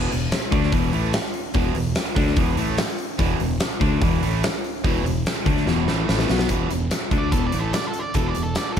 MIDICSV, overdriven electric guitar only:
0, 0, Header, 1, 2, 480
1, 0, Start_track
1, 0, Tempo, 412655
1, 1803, Time_signature, 4, 2, 24, 8
1, 10232, End_track
2, 0, Start_track
2, 0, Title_t, "Overdriven electric guitar"
2, 0, Program_c, 0, 29
2, 0, Note_on_c, 0, 40, 97
2, 0, Note_on_c, 0, 47, 108
2, 0, Note_on_c, 0, 52, 100
2, 118, Note_off_c, 0, 40, 0
2, 121, Note_off_c, 0, 47, 0
2, 132, Note_on_c, 0, 40, 66
2, 134, Note_off_c, 0, 52, 0
2, 134, Note_on_c, 0, 47, 75
2, 322, Note_off_c, 0, 40, 0
2, 324, Note_off_c, 0, 47, 0
2, 594, Note_on_c, 0, 50, 101
2, 600, Note_on_c, 0, 57, 94
2, 606, Note_on_c, 0, 62, 95
2, 833, Note_off_c, 0, 50, 0
2, 836, Note_off_c, 0, 57, 0
2, 838, Note_on_c, 0, 40, 82
2, 839, Note_off_c, 0, 62, 0
2, 843, Note_on_c, 0, 47, 94
2, 856, Note_on_c, 0, 52, 95
2, 1072, Note_off_c, 0, 52, 0
2, 1074, Note_off_c, 0, 40, 0
2, 1075, Note_off_c, 0, 47, 0
2, 1079, Note_on_c, 0, 45, 86
2, 1085, Note_on_c, 0, 52, 108
2, 1092, Note_on_c, 0, 57, 109
2, 1315, Note_off_c, 0, 45, 0
2, 1318, Note_off_c, 0, 52, 0
2, 1321, Note_off_c, 0, 57, 0
2, 1794, Note_on_c, 0, 40, 105
2, 1799, Note_on_c, 0, 47, 110
2, 1805, Note_on_c, 0, 52, 114
2, 2030, Note_off_c, 0, 40, 0
2, 2033, Note_off_c, 0, 47, 0
2, 2036, Note_off_c, 0, 52, 0
2, 2047, Note_on_c, 0, 40, 65
2, 2051, Note_on_c, 0, 47, 78
2, 2236, Note_off_c, 0, 40, 0
2, 2238, Note_off_c, 0, 47, 0
2, 2517, Note_on_c, 0, 50, 103
2, 2527, Note_on_c, 0, 57, 95
2, 2529, Note_on_c, 0, 62, 104
2, 2750, Note_off_c, 0, 50, 0
2, 2755, Note_off_c, 0, 57, 0
2, 2756, Note_off_c, 0, 62, 0
2, 2760, Note_on_c, 0, 40, 93
2, 2767, Note_on_c, 0, 47, 95
2, 2778, Note_on_c, 0, 52, 97
2, 2979, Note_off_c, 0, 47, 0
2, 2981, Note_off_c, 0, 52, 0
2, 2983, Note_on_c, 0, 45, 99
2, 2991, Note_off_c, 0, 40, 0
2, 2995, Note_on_c, 0, 52, 103
2, 3005, Note_on_c, 0, 57, 95
2, 3223, Note_off_c, 0, 45, 0
2, 3229, Note_off_c, 0, 52, 0
2, 3233, Note_off_c, 0, 57, 0
2, 3702, Note_on_c, 0, 40, 100
2, 3715, Note_on_c, 0, 47, 112
2, 3718, Note_on_c, 0, 52, 101
2, 3939, Note_off_c, 0, 40, 0
2, 3941, Note_off_c, 0, 47, 0
2, 3949, Note_off_c, 0, 52, 0
2, 3953, Note_on_c, 0, 40, 66
2, 3955, Note_on_c, 0, 47, 71
2, 4145, Note_off_c, 0, 40, 0
2, 4146, Note_off_c, 0, 47, 0
2, 4420, Note_on_c, 0, 50, 96
2, 4424, Note_on_c, 0, 57, 94
2, 4435, Note_on_c, 0, 62, 115
2, 4659, Note_off_c, 0, 50, 0
2, 4661, Note_off_c, 0, 57, 0
2, 4667, Note_off_c, 0, 62, 0
2, 4667, Note_on_c, 0, 40, 81
2, 4678, Note_on_c, 0, 47, 93
2, 4680, Note_on_c, 0, 52, 104
2, 4902, Note_off_c, 0, 40, 0
2, 4904, Note_off_c, 0, 52, 0
2, 4908, Note_off_c, 0, 47, 0
2, 4915, Note_on_c, 0, 45, 96
2, 4918, Note_on_c, 0, 52, 110
2, 4931, Note_on_c, 0, 57, 109
2, 5147, Note_off_c, 0, 45, 0
2, 5148, Note_off_c, 0, 52, 0
2, 5154, Note_off_c, 0, 57, 0
2, 5641, Note_on_c, 0, 40, 109
2, 5648, Note_on_c, 0, 47, 100
2, 5658, Note_on_c, 0, 52, 108
2, 5859, Note_off_c, 0, 40, 0
2, 5863, Note_off_c, 0, 47, 0
2, 5873, Note_on_c, 0, 40, 62
2, 5877, Note_on_c, 0, 47, 74
2, 5878, Note_off_c, 0, 52, 0
2, 6065, Note_off_c, 0, 40, 0
2, 6067, Note_off_c, 0, 47, 0
2, 6344, Note_on_c, 0, 50, 89
2, 6355, Note_on_c, 0, 57, 102
2, 6359, Note_on_c, 0, 62, 106
2, 6581, Note_on_c, 0, 40, 89
2, 6582, Note_off_c, 0, 50, 0
2, 6587, Note_off_c, 0, 57, 0
2, 6589, Note_off_c, 0, 62, 0
2, 6589, Note_on_c, 0, 47, 99
2, 6595, Note_on_c, 0, 52, 93
2, 6811, Note_off_c, 0, 47, 0
2, 6812, Note_off_c, 0, 52, 0
2, 6816, Note_on_c, 0, 45, 95
2, 6821, Note_off_c, 0, 40, 0
2, 6826, Note_on_c, 0, 52, 99
2, 6833, Note_on_c, 0, 57, 104
2, 7036, Note_off_c, 0, 45, 0
2, 7050, Note_on_c, 0, 45, 93
2, 7053, Note_off_c, 0, 52, 0
2, 7055, Note_off_c, 0, 57, 0
2, 7067, Note_on_c, 0, 52, 101
2, 7069, Note_on_c, 0, 57, 99
2, 7296, Note_off_c, 0, 45, 0
2, 7304, Note_off_c, 0, 52, 0
2, 7304, Note_on_c, 0, 47, 104
2, 7305, Note_off_c, 0, 57, 0
2, 7311, Note_on_c, 0, 54, 115
2, 7317, Note_on_c, 0, 59, 98
2, 7538, Note_off_c, 0, 47, 0
2, 7540, Note_on_c, 0, 40, 95
2, 7547, Note_off_c, 0, 54, 0
2, 7550, Note_off_c, 0, 59, 0
2, 7552, Note_on_c, 0, 47, 90
2, 7555, Note_on_c, 0, 52, 107
2, 7782, Note_off_c, 0, 40, 0
2, 7788, Note_off_c, 0, 47, 0
2, 7789, Note_off_c, 0, 52, 0
2, 7798, Note_on_c, 0, 40, 62
2, 7801, Note_on_c, 0, 47, 62
2, 7990, Note_off_c, 0, 40, 0
2, 7992, Note_off_c, 0, 47, 0
2, 8273, Note_on_c, 0, 50, 92
2, 8286, Note_on_c, 0, 57, 102
2, 8290, Note_on_c, 0, 62, 101
2, 8510, Note_off_c, 0, 50, 0
2, 8517, Note_off_c, 0, 57, 0
2, 8517, Note_on_c, 0, 40, 81
2, 8519, Note_off_c, 0, 62, 0
2, 8522, Note_on_c, 0, 47, 83
2, 8530, Note_on_c, 0, 52, 91
2, 8753, Note_off_c, 0, 40, 0
2, 8755, Note_off_c, 0, 47, 0
2, 8756, Note_off_c, 0, 52, 0
2, 8763, Note_on_c, 0, 45, 84
2, 8770, Note_on_c, 0, 52, 92
2, 8783, Note_on_c, 0, 57, 95
2, 8997, Note_off_c, 0, 45, 0
2, 9000, Note_off_c, 0, 52, 0
2, 9007, Note_off_c, 0, 57, 0
2, 9479, Note_on_c, 0, 40, 85
2, 9493, Note_on_c, 0, 47, 98
2, 9496, Note_on_c, 0, 52, 106
2, 9715, Note_off_c, 0, 40, 0
2, 9724, Note_off_c, 0, 47, 0
2, 9725, Note_off_c, 0, 52, 0
2, 9729, Note_on_c, 0, 40, 67
2, 9736, Note_on_c, 0, 47, 72
2, 9921, Note_off_c, 0, 40, 0
2, 9925, Note_off_c, 0, 47, 0
2, 10232, End_track
0, 0, End_of_file